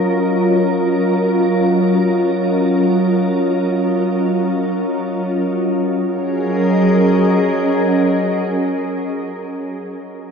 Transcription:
ambient pad
Already playing: F#3 C#4 F4 A#4 D#5
5.61 F#3
5.72 C#4
5.86 G#4
5.96 A#4
6.09 D#5

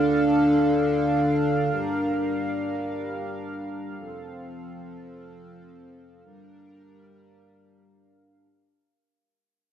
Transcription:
analog synth pad
Already playing: D3 D4 A4 F5
1.72 G3 A#4
3.98 F3 C4 A4
6.24 G3 D4 A#4

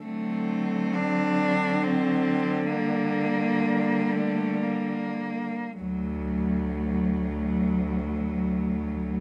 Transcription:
cello
0.03 D3 F#3 A3 C4
0.95 D4
1.83 C4
2.68 G3 A#3
4.11 A3
4.63 A#3
5.80 D2 F#3 A3

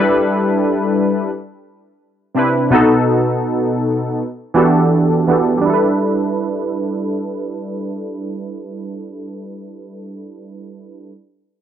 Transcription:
synth keys
Already playing: G3 D4 E4 A4 B4
2.34 C3 C4 D4 E4
2.39 B4
2.70 B2 B3 D#4 F#4
2.74 A4
4.54 E3 B3 D4 F#4 G4
4.58 A4
5.27 E3 B3 D4 F#4 G4 A4
5.57 G3 D4
5.65 E4 A4
5.74 B4

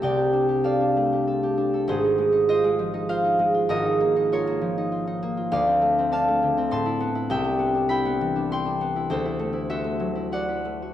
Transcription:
harp
Already playing: A3 C4 G4 A4 C5 A5
0.02 C2 C3 D5 G5
0.17 G4
0.33 D4
0.49 G4
0.64 A4 D5 F5
0.81 D4
0.97 A3
1.13 G4
1.27 A4
1.43 G4
1.58 D4
1.74 A4
1.88 G#1 G#2 G#4 C5
2.04 D#4
2.18 G#3
2.32 D#4
2.49 F4 C5 D#5
2.64 G#3
2.79 F3
2.94 D#4
3.09 F4 C5 F5
3.24 D#4
3.39 G#3
3.54 F4
3.69 G#1 G#2 A#4 D#5
3.85 D#4
4.00 A#3
4.16 D#4
4.32 F4 A#4 C#5
4.47 A#3
4.61 F3
4.78 D#4
4.92 F4
5.07 D#4
5.23 A#3
5.37 F4
5.52 D2 D5 F5
5.67 C4
5.82 A3
5.99 C4
6.12 D4 F5 A5
6.28 A3
6.43 D3
6.58 C4
6.71 A2 A5 C6
6.86 E4
7.00 B3
7.15 E4
7.30 C2 E5 G5
7.44 D4
7.59 B3
7.75 D4
7.89 E4 G5 B5
8.05 B3
8.21 E3
8.36 D4
8.51 E4 G5 C6
8.66 D4
8.81 B3
8.96 E4
9.10 D2 A4 C5
9.26 E4
9.39 A3
9.53 E4
9.69 F#4 C5 E5
9.84 A3
10.00 F#3
10.15 E4
10.32 F#4 D5 F#5
10.48 E4
10.65 A3
10.82 F#4

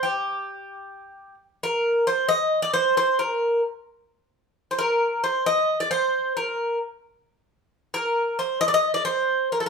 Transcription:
bouzouki
0.03 G4
1.63 A#4
2.07 C5
2.29 D#5
2.62 D5
2.73 C5
2.97 C5
3.19 A#4
4.71 C5
4.79 A#4
5.24 C5
5.46 D#5
5.80 D5
5.91 C5
6.37 A#4
7.94 A#4
8.39 C5
8.61 D#5
8.68 D5
8.74 D#5
8.94 D5
9.05 C5
9.52 A#4
9.60 A4

